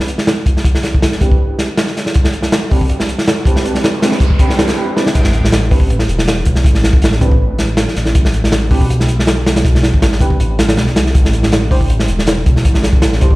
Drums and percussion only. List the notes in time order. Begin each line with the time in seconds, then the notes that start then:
0.00 snare
0.08 closed hi-hat
0.18 snare
0.27 snare, closed hi-hat
0.46 kick, closed hi-hat
0.57 snare
0.65 kick, closed hi-hat
0.75 snare
0.83 snare, closed hi-hat
0.94 kick
1.02 snare, closed hi-hat
1.12 snare
1.21 kick, closed hi-hat
1.31 kick
1.59 snare, closed hi-hat
1.77 snare, closed hi-hat
1.87 snare
1.97 snare, closed hi-hat
2.06 snare
2.14 kick, closed hi-hat
2.24 snare
2.33 closed hi-hat
2.42 snare
2.52 snare, closed hi-hat
2.71 kick, open hi-hat
2.81 kick
2.89 closed hi-hat
3.00 snare
3.09 closed hi-hat
3.18 snare
3.27 snare, closed hi-hat
3.45 kick, closed hi-hat
3.56 snare
3.65 closed hi-hat
3.75 snare
3.84 snare, closed hi-hat
4.02 snare, closed hi-hat
4.12 snare
4.20 kick, closed hi-hat
4.30 kick
4.39 kick, closed hi-hat
4.50 snare
4.59 snare, closed hi-hat
4.67 snare, closed hi-hat
4.97 snare
5.06 snare
5.15 kick, closed hi-hat, crash
5.24 snare
5.33 closed hi-hat
5.45 snare
5.52 snare, closed hi-hat
5.71 kick, open hi-hat
5.80 kick
5.90 closed hi-hat
5.99 snare
6.09 closed hi-hat
6.19 snare
6.27 snare, closed hi-hat
6.45 kick, closed hi-hat
6.55 snare
6.64 kick, closed hi-hat
6.75 snare
6.84 snare, closed hi-hat
6.93 kick
7.02 snare, closed hi-hat
7.12 snare
7.21 kick, closed hi-hat
7.32 kick
7.59 snare, closed hi-hat
7.77 snare, closed hi-hat
7.88 snare
7.96 snare, closed hi-hat
8.06 snare
8.15 kick, closed hi-hat
8.25 snare
8.34 closed hi-hat
8.44 snare
8.52 snare, closed hi-hat
8.71 kick, open hi-hat
8.81 kick
8.90 closed hi-hat
9.00 snare
9.08 closed hi-hat
9.19 snare
9.27 snare, closed hi-hat
9.46 snare, closed hi-hat
9.56 snare, closed hi-hat
9.65 kick, closed hi-hat
9.75 snare
9.83 snare, closed hi-hat
9.94 kick
10.02 snare, closed hi-hat
10.12 snare
10.21 kick, closed hi-hat
10.30 kick
10.40 closed hi-hat
10.59 snare, closed hi-hat
10.69 snare, closed hi-hat
10.77 snare, closed hi-hat
10.87 snare
10.96 snare, closed hi-hat
11.06 snare
11.15 kick, closed hi-hat
11.25 snare
11.33 closed hi-hat
11.43 snare
11.52 snare, closed hi-hat
11.71 kick, open hi-hat
11.81 kick
11.90 closed hi-hat
12.00 snare
12.08 closed hi-hat
12.19 snare
12.27 snare, closed hi-hat
12.46 kick, closed hi-hat
12.56 snare
12.65 kick, closed hi-hat
12.74 snare
12.83 snare, closed hi-hat
12.93 kick
13.02 snare, closed hi-hat
13.13 snare
13.21 kick, closed hi-hat
13.31 kick